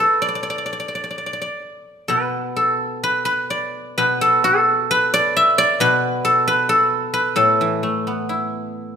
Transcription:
Already playing: F#3 E4 F#4 B4
0.00 A4
0.22 D5
0.29 D5
0.35 D5
0.43 D5
0.50 D5
0.58 D5
0.66 D5
0.73 D5
0.80 D5
0.88 D5
0.95 D5
1.04 D5
1.11 D5
1.18 D5
1.26 D5
1.33 D5
1.42 D5
2.08 B2 B4
2.56 A4
3.04 B4
3.25 B4
3.50 D5
3.98 B2 B4
4.21 A4
4.44 A4
4.91 B4
5.14 D5
5.37 E5
5.58 D5
5.80 B2 B4
6.25 A4
6.48 B4
6.69 A4
7.14 B4
7.36 A2 A4
7.61 E3
7.83 A3
8.07 B3
8.29 E4

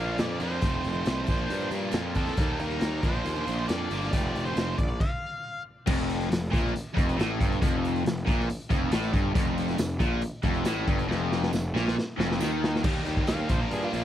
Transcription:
Already playing: A#2 F3 A#3 D4
0.00 A#1 D4 F4 F5
0.18 F2 A#2 F3 A#3 D4 F4 D5, snare, closed hi-hat
0.40 F2 A#2 F3 A#3 D4 F4 C5, closed hi-hat
0.50 A#3 D4 F4
0.62 F1 F2 C3 F3 A3 C4 F4, kick, closed hi-hat
0.84 F1, closed hi-hat
0.92 F3 A3 C4 F4
1.05 C2 F2 C3 F3 A3 C4 F4, snare, closed hi-hat
1.26 A#1 A#2 F3 A#3 D4 F4, kick, closed hi-hat
1.38 A#3 D4 F4
1.50 G2, closed hi-hat
1.60 A#3 D4 F4
1.71 G2 F3 A#3 D4 F4, closed hi-hat
1.91 F2 A#2 F3 A#3 D4 F4, snare, closed hi-hat
2.15 A#2 F3 A#3 D4 F4 A4, kick, closed hi-hat
2.26 A#3 D4 F4, snare
2.37 D#2 D#3 G3 A#3 D#4 G4, kick, closed hi-hat
2.60 D#2 A#4, closed hi-hat
2.70 A#3 D#4 G4
2.81 D#2 D#3 A#3 D#4 G4, snare, closed hi-hat
3.02 A#1 A#2 F3 A#3 D4 F4 C5, kick, closed hi-hat
3.15 D4 F4
3.25 D#2, closed hi-hat
3.36 A#3 D4 F4
3.47 A#1 F3 A#3 D4 F4, closed hi-hat
3.68 F2 A#2 F3 A#3 D4 F4 D5, snare, closed hi-hat
3.90 G1 A#2 F3 A#3 D4 F4, closed hi-hat
4.01 A#3 D4 F4, snare
4.11 F1 F2 C3 F3 A3 C4 F4 D5, kick, closed hi-hat
4.35 F1, closed hi-hat
4.45 F3 A3 C4 F4 C5
4.56 F1 F2 C3 F3 A3 C4 F4, snare, closed hi-hat
4.78 A#1 F3 A#3 D4 F4 D5, kick, closed hi-hat
4.89 A#3 D4 F4
5.00 F5, kick, crash
5.86 F1 F2, kick, crash
6.10 closed hi-hat
6.21 closed hi-hat
6.30 F1 F2, snare, closed hi-hat
6.51 A#1 A#2, kick, closed hi-hat
6.66 snare
6.73 muted distorted electric guitar stroke, muted overdriven electric guitar stroke, muted picked electric bass stroke, closed hi-hat
6.94 F1 F2, kick, closed hi-hat
7.09 closed hi-hat
7.16 A1 A2, closed hi-hat
7.21 snare
7.39 G1 G2, kick, closed hi-hat
7.52 closed hi-hat
7.61 F1 F2, kick, closed hi-hat
7.85 closed hi-hat
7.96 closed hi-hat
8.04 F1 F2, snare, closed hi-hat
8.17 closed hi-hat
8.26 A#1 A#2, kick, closed hi-hat
8.41 snare
8.48 muted distorted electric guitar stroke, muted overdriven electric guitar stroke, muted picked electric bass stroke, closed hi-hat
8.60 closed hi-hat
8.70 F1 F2, kick, closed hi-hat
8.92 A1 A2, snare, closed hi-hat
9.04 closed hi-hat
9.12 G1 G2, kick, closed hi-hat
9.34 F1 F2, kick, closed hi-hat
9.58 snare, closed hi-hat
9.68 snare, closed hi-hat
9.78 F1 F2, snare, closed hi-hat, tambourine
9.89 closed hi-hat
9.99 A#1 A#2, kick, closed hi-hat
10.22 muted distorted electric guitar stroke, muted overdriven electric guitar stroke, muted picked electric bass stroke, closed hi-hat
10.43 F1 F2, kick, closed hi-hat
10.54 closed hi-hat
10.65 A1 A2, snare, closed hi-hat, tambourine
10.88 G1 G2, kick, closed hi-hat
10.99 closed hi-hat
11.08 F1 F2, snare
11.32 snare
11.43 snare
11.52 F1 F2, snare, tambourine
11.74 A#1 A#2, snare
11.88 snare
11.96 muted overdriven electric guitar stroke, muted picked electric bass stroke, muted distorted electric guitar stroke, snare
12.19 F1 F2, snare
12.31 snare
12.40 D#2 D#3, snare, tambourine
12.64 snare
12.75 snare
12.84 D#2 D#3 G3 A#3 D#4 G4, kick, crash
13.05 D#2 D#3 A#3 D#4 G4, snare, closed hi-hat
13.17 kick
13.27 D#2 D#3 A#3 D#4 G4 F5, snare, closed hi-hat
13.39 A#3 D#4 G4
13.49 A#1 A#2 F3 A#3 D4 F4 C5, kick, closed hi-hat
13.61 A#4
13.71 G2 G#4, closed hi-hat
13.82 A#3 D4 F4
13.93 A#1 F3 A#3 D4 F4, closed hi-hat

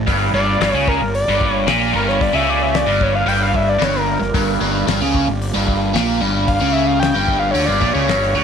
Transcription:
0.07 G1 G2 A#3 F4 G4, kick, open hi-hat
0.33 G1 G2 D5
0.60 G1 G2, snare, open hi-hat
0.70 C#2 C#3 C#5
0.88 A#4, kick
1.00 G1 G2
1.15 D5, open hi-hat
1.27 G1 G2
1.41 kick
1.51 C#5
1.66 A#1 A#2, snare, open hi-hat
1.93 G1 G2 A#4
2.08 C#5, snare
2.21 D5, kick, open hi-hat
2.33 C#2 C#3 E5
2.49 D5
2.63 E5
2.74 D5, snare, open hi-hat
2.86 G1 G2
3.01 C#5, kick
3.15 F5
3.26 G1 G2 G5, open hi-hat
3.42 F5
3.54 E5, kick
3.69 D5
3.78 G1 G2, snare, open hi-hat
3.83 C#5
3.96 A#4, snare
4.19 G1 G2, snare
4.34 G1 G2, kick, open hi-hat
4.60 G1 G2
4.87 G1 G2, snare, open hi-hat
5.00 C#2 C#3
5.15 kick
5.27 G1 G2
5.42 open hi-hat
5.54 G1 G2
5.68 kick
5.94 A#1 A#2, snare, open hi-hat
6.20 G1 G2
6.48 F5, kick, open hi-hat
6.60 C#2 C#3
6.73 E5
6.86 F5
7.00 G5, snare, open hi-hat
7.13 G1 G2 G5
7.28 kick
7.39 F5
7.51 D3 C#5
7.55 D2, open hi-hat
7.65 G1 G2 D5
7.81 A#1 A#2, kick
7.93 C#2 C#3 C#5
8.08 G1 G2, snare, open hi-hat
8.23 snare
8.33 D2 D3

